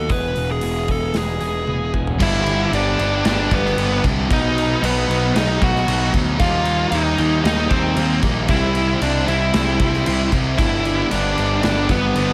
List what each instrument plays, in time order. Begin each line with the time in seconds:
Already playing: lead electric guitar A4
0.07 picked electric bass E1, clean electric guitar E2 B2 E3 G#3 B3 G#4, kick, open hi-hat
0.12 lead electric guitar B4
0.34 picked electric bass E1, clean electric guitar E3 G#3 B3 G#4, open hi-hat
0.51 lead electric guitar G#4
0.60 picked electric bass E1, clean electric guitar E2 B2 E3 G#3 B3 G#4, open hi-hat
0.88 clean electric guitar E3 G#3 B3 G#4, lead electric guitar A4, kick, open hi-hat
1.14 picked electric bass E1, clean electric guitar E3 G#3 B3 G#4, snare, open hi-hat
1.18 lead electric guitar G#4
1.41 picked electric bass E1, clean electric guitar E2 B2 E3 G#3 B3 G#4, open hi-hat
1.67 picked electric bass E1, clean electric guitar E3 G#3 B3 G#4, high tom
1.93 picked electric bass E1, clean electric guitar E3 G#3 B3 G#4, kick
2.07 floor tom
2.19 picked electric bass G1, distorted electric guitar G2 D3 G3 B3 D4 G4, string section G4 B4 D5 B5, lead electric guitar E5, kick, crash
2.23 lead electric guitar E4
2.45 distorted electric guitar G3 B3 D4, crash
2.71 picked electric bass G1, distorted electric guitar D3 G3 B3 D4 G4, lead electric guitar D5, crash
2.77 lead electric guitar D4
2.98 picked electric bass G1, distorted electric guitar G2 D3 G3 B3 D4 G4, crash
3.24 picked electric bass G1, distorted electric guitar D3 G3 B3 D4, lead electric guitar D4, snare, crash
3.29 lead electric guitar D5
3.51 picked electric bass G1, distorted electric guitar G2 D3 G3 B3 D4, lead electric guitar B3 B4, kick, crash
3.66 snare
3.76 picked electric bass G1, distorted electric guitar G2 D3 G3 B3 D4 G4, crash
4.02 picked electric bass C2, distorted electric guitar G3 B3 D4 G4, kick, crash
4.30 picked electric bass B1, distorted electric guitar B2 F#3 B3 D#4, lead electric guitar D#4 D#5, string section F#4 D#5, kick, crash
4.57 distorted electric guitar F#3 B3 D#4, crash
4.82 picked electric bass B1, distorted electric guitar B2 F#3 B3 D#4, lead electric guitar B4, crash
4.86 lead electric guitar B3
5.08 picked electric bass B1, distorted electric guitar B2 F#3 B3 D#4, crash
5.35 picked electric bass B1, distorted electric guitar B2 F#3 B3 D#4, lead electric guitar D#4 D#5, snare, crash
5.60 picked electric bass B1, distorted electric guitar B2 F#3 B3 D#4, lead electric guitar F#4 F#5, kick, crash
5.76 snare
5.87 picked electric bass B1, distorted electric guitar B2 F#3 B3 D#4, crash
6.13 picked electric bass D2, distorted electric guitar F#3 B3 D#4, kick, crash
6.39 picked electric bass D#2, distorted electric guitar D#3 G3 A#3 D#4, lead electric guitar F4 F5, string section G4 A#4 A#5, kick, crash
6.64 distorted electric guitar G3 A#3 D#4, crash
6.91 picked electric bass D#2, distorted electric guitar D#3 G3 A#3 D#4, lead electric guitar D#4 D#5, crash
7.17 picked electric bass D#2, distorted electric guitar D#3 G3 A#3 D#4, crash
7.44 picked electric bass D#2, distorted electric guitar D#3 G3 A#3 D#4, lead electric guitar D#4 D#5, snare, crash
7.69 picked electric bass D#2, distorted electric guitar G3 A#3 D#4, lead electric guitar C4 C5, kick, crash
7.73 distorted electric guitar D#3
7.96 picked electric bass D#2, distorted electric guitar D#3 G3 A#3 D#4, crash
8.22 picked electric bass A#1, distorted electric guitar G3 A#3 D#4, kick, crash
8.48 picked electric bass C2, distorted electric guitar C3 G3 C4 E4, lead electric guitar E4 E5, string section G4 C5 E5 C6, kick, crash
8.74 distorted electric guitar G3 C4 E4, crash
9.01 picked electric bass C2, distorted electric guitar C3 G3 C4 E4, lead electric guitar D4 D5, crash
9.26 picked electric bass C2, distorted electric guitar C3 G3 C4 E4, lead electric guitar E4 E5, crash
9.53 picked electric bass C2, distorted electric guitar C3 G3 C4 E4, snare, crash
9.79 picked electric bass C2, distorted electric guitar C3 G3 C4 E4, kick, crash
9.94 snare
10.05 picked electric bass C2, distorted electric guitar C3 G3 C4 E4, crash
10.31 picked electric bass C2, distorted electric guitar G3 C4 E4, kick, crash
10.56 picked electric bass G1, distorted electric guitar G2 D3 G3 B3 D4, lead electric guitar E4 E5, string section B4 D5 B5, kick, crash
10.83 distorted electric guitar G3 B3 D4, crash
11.10 picked electric bass G1, distorted electric guitar D3 G3 B3 D4, lead electric guitar D4 D5, crash
11.36 picked electric bass G1, distorted electric guitar G2 D3 G3 B3 D4, crash
11.61 picked electric bass G1, distorted electric guitar D3 G3 B3 D4, lead electric guitar D4 D5, snare, crash
11.88 picked electric bass G1, distorted electric guitar G2 D3 G3 B3 D4, lead electric guitar B3 B4, kick, crash
12.14 picked electric bass G1, distorted electric guitar G2 D3 G3 B3 D4, crash